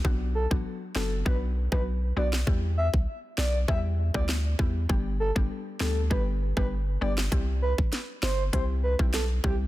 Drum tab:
HH |----------------|----------------|----------------|x---x---x---x---|
SD |------o----r---o|------o----ro---|------o----r---o|----o-o-----o---|
BD |o--o----o--o----|o--o----o--o--o-|o--o----o--o----|o--o----o--o--o-|